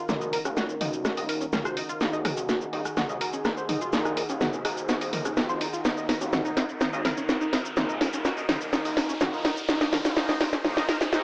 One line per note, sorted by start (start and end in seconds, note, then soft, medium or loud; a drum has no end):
0.00 11.23 D#3 medium
0.00 1.92 C#4 loud
0.00 11.23 D#4 medium
0.00 11.23 F#4 medium
0.00 1.99 A#4 medium
0.00 riser medium
0.09 0.39 A#1 medium
0.09 0.16 D#4 loud
0.09 snare medium
0.09 mid tom medium
0.09 shaker medium
0.21 0.28 D#5 medium
0.21 shaker soft
0.33 0.37 A#4 loud
0.33 open hi-hat loud
0.45 0.75 D#1 medium
0.45 0.49 C#4 medium
0.45 cross-stick soft
0.45 shaker medium
0.57 0.64 F#4 loud
0.57 snare medium
0.57 shaker medium
0.69 shaker soft
0.81 1.11 D#1 medium
0.81 0.91 D#4 loud
0.81 open hi-hat loud
0.81 mid tom medium
0.93 shaker medium
1.05 1.12 F#4 loud
1.05 cross-stick soft
1.05 snare medium
1.05 shaker medium
1.17 1.47 D#1 medium
1.17 1.24 D#5 medium
1.17 open hi-hat medium
1.17 shaker soft
1.29 1.33 A#4 loud
1.29 open hi-hat loud
1.41 1.45 C#4 medium
1.41 shaker medium
1.53 1.83 F1 medium
1.53 1.57 A#4 medium
1.53 snare medium
1.53 mid tom medium
1.53 shaker medium
1.65 1.75 C5 medium
1.65 cross-stick soft
1.65 shaker soft
1.77 1.87 D#4 loud
1.77 open hi-hat loud
1.89 1.99 F4 loud
1.89 shaker medium
2.01 2.31 D#1 loud
2.01 2.11 D#3 medium
2.01 2.11 A#3 medium
2.01 2.11 D#4 medium
2.01 2.08 D#4 loud
2.01 2.88 F#4 loud
2.01 5.83 G#4 medium
2.01 snare medium
2.01 shaker medium
2.13 2.20 D#5 medium
2.13 shaker soft
2.25 2.29 A#4 loud
2.25 cross-stick medium
2.25 open hi-hat loud
2.25 mid tom medium
2.37 2.67 D#1 medium
2.37 2.41 C#4 medium
2.37 shaker medium
2.49 2.56 F#4 loud
2.49 snare medium
2.49 shaker medium
2.61 shaker soft
2.73 2.81 D#1 loud
2.73 2.83 D#4 loud
2.73 open hi-hat loud
2.85 cross-stick medium
2.85 shaker medium
2.97 3.04 F#4 loud
2.97 snare medium
2.97 mid tom medium
2.97 shaker medium
3.09 3.17 C#2 medium
3.09 3.16 D#5 medium
3.09 shaker soft
3.21 3.25 A#4 loud
3.21 open hi-hat loud
3.33 3.37 C#4 medium
3.33 shaker medium
3.45 3.53 G#1 medium
3.45 3.49 A#4 medium
3.45 cross-stick medium
3.45 snare medium
3.45 shaker medium
3.57 3.67 C5 medium
3.57 shaker soft
3.69 3.79 D#4 loud
3.69 5.76 C5 loud
3.69 open hi-hat loud
3.69 mid tom medium
3.81 3.91 F4 loud
3.81 shaker medium
3.93 4.23 A#1 medium
3.93 4.10 D#3 medium
3.93 4.10 A#3 medium
3.93 4.00 D#4 loud
3.93 4.10 D#4 medium
3.93 snare medium
3.93 shaker medium
4.05 4.12 D#5 medium
4.05 cross-stick medium
4.05 shaker soft
4.17 4.21 A#4 loud
4.17 open hi-hat loud
4.29 4.59 D#1 medium
4.29 4.33 C#4 medium
4.29 shaker medium
4.41 4.48 F#4 loud
4.41 snare medium
4.41 mid tom medium
4.41 shaker soft
4.53 shaker soft
4.65 4.95 D#1 medium
4.65 4.75 D#4 loud
4.65 cross-stick medium
4.65 open hi-hat loud
4.77 shaker medium
4.89 4.96 F#4 loud
4.89 snare medium
4.89 shaker medium
5.01 5.31 D#1 medium
5.01 5.08 D#5 medium
5.01 open hi-hat medium
5.01 shaker soft
5.13 5.23 D#3 medium
5.13 5.23 A#3 medium
5.13 5.23 D#4 loud
5.13 5.17 A#4 loud
5.13 open hi-hat loud
5.13 mid tom medium
5.25 5.29 C#4 medium
5.25 cross-stick medium
5.25 shaker medium
5.37 5.67 F1 medium
5.37 5.41 A#4 medium
5.37 snare medium
5.37 shaker medium
5.49 5.59 C5 medium
5.49 shaker soft
5.61 5.71 D#4 loud
5.61 open hi-hat loud
5.73 5.83 F4 loud
5.73 shaker medium
5.85 6.15 D#1 loud
5.85 5.95 D#3 medium
5.85 5.95 A#3 medium
5.85 5.95 D#4 medium
5.85 5.92 D#4 medium
5.85 6.72 D#4 loud
5.85 9.68 A#4 medium
5.85 snare medium
5.85 shaker medium
5.97 6.04 D#5 medium
5.97 shaker soft
6.09 6.13 A#4 medium
6.09 snare medium
6.09 open hi-hat loud
6.21 6.51 D#1 medium
6.21 6.25 C#4 medium
6.21 shaker medium
6.33 6.40 F#4 loud
6.33 snare medium
6.33 mid tom medium
6.33 shaker soft
6.45 6.55 D#4 medium
6.45 shaker soft
6.57 6.65 D#1 loud
6.57 6.67 D#4 medium
6.57 snare medium
6.57 open hi-hat loud
6.69 shaker medium
6.81 6.91 D#3 medium
6.81 6.91 A#3 medium
6.81 6.88 D#4 loud
6.81 6.91 D#4 medium
6.81 7.68 D#4 loud
6.81 snare medium
6.81 shaker medium
6.93 7.01 C#2 medium
6.93 7.00 D#5 medium
6.93 shaker soft
7.05 7.09 A#4 medium
7.05 snare medium
7.05 open hi-hat loud
7.05 mid tom medium
7.17 7.21 C#4 medium
7.17 shaker medium
7.29 7.37 G#1 medium
7.29 7.36 F#4 medium
7.29 snare medium
7.29 shaker medium
7.41 7.51 D#4 loud
7.41 shaker soft
7.53 7.63 D#4 loud
7.53 snare medium
7.53 open hi-hat loud
7.65 shaker medium
7.77 8.07 A#1 medium
7.77 7.87 D#3 medium
7.77 7.87 A#3 medium
7.77 8.64 D#4 loud
7.77 7.87 D#4 medium
7.77 7.84 D#4 loud
7.77 snare medium
7.77 mid tom medium
7.77 shaker medium
7.89 7.96 D#5 medium
7.89 shaker soft
8.01 8.05 A#4 loud
8.01 snare medium
8.01 open hi-hat loud
8.13 8.43 D#1 medium
8.13 8.17 C#4 medium
8.13 shaker medium
8.25 8.32 F#4 loud
8.25 snare medium
8.25 shaker medium
8.37 8.47 D#4 medium
8.37 shaker soft
8.49 8.79 D#1 medium
8.49 8.59 D#4 loud
8.49 snare medium
8.49 open hi-hat loud
8.49 mid tom loud
8.61 shaker medium
8.73 8.83 D#3 medium
8.73 8.83 A#3 medium
8.73 8.80 D#4 loud
8.73 8.83 D#4 medium
8.73 9.60 D#4 loud
8.73 snare medium
8.73 shaker medium
8.85 9.15 D#1 medium
8.85 8.92 D#5 medium
8.85 open hi-hat medium
8.85 shaker soft
8.97 9.01 A#4 loud
8.97 snare medium
8.97 open hi-hat loud
9.09 9.13 C#4 medium
9.09 shaker medium
9.21 9.51 F1 medium
9.21 9.28 F#4 loud
9.21 snare medium
9.21 mid tom loud
9.21 shaker medium
9.33 9.43 D#4 loud
9.33 shaker soft
9.45 9.55 D#4 loud
9.45 snare medium
9.45 open hi-hat loud
9.57 shaker medium
9.69 9.99 D#1 loud
9.69 9.79 D#3 medium
9.69 9.79 A#3 medium
9.69 10.15 D#4 loud
9.69 9.76 D#4 loud
9.69 9.79 D#4 medium
9.69 11.23 C5 medium
9.69 snare loud
9.69 shaker medium
9.81 9.88 D#5 medium
9.81 snare medium
9.81 shaker soft
9.93 9.97 A#4 loud
9.93 snare medium
9.93 open hi-hat loud
9.93 mid tom loud
10.05 10.35 D#1 medium
10.05 10.09 C#4 medium
10.05 snare medium
10.05 shaker medium
10.17 10.27 D#3 medium
10.17 10.27 A#3 medium
10.17 10.63 D#4 loud
10.17 10.24 D#4 loud
10.17 10.27 D#4 medium
10.17 snare medium
10.17 shaker medium
10.29 10.36 D#5 medium
10.29 snare medium
10.29 shaker soft
10.41 10.49 D#1 loud
10.41 10.45 A#4 loud
10.41 snare loud
10.41 open hi-hat loud
10.53 10.57 C#4 medium
10.53 snare medium
10.53 shaker medium
10.65 10.75 D#3 medium
10.65 10.75 A#3 medium
10.65 10.72 D#4 loud
10.65 10.75 D#4 medium
10.65 11.11 D#4 loud
10.65 snare medium
10.65 mid tom loud
10.65 shaker medium
10.77 10.85 C#2 medium
10.77 10.84 D#5 medium
10.77 snare medium
10.77 shaker soft
10.89 10.93 A#4 loud
10.89 snare loud
10.89 open hi-hat loud
11.01 11.05 C#4 medium
11.01 snare medium
11.01 shaker medium
11.13 11.21 G#1 medium
11.13 11.23 D#3 medium
11.13 11.23 A#3 medium
11.13 11.23 D#4 medium
11.13 11.23 D#4 loud
11.13 11.20 D#4 loud
11.13 snare loud
11.13 shaker medium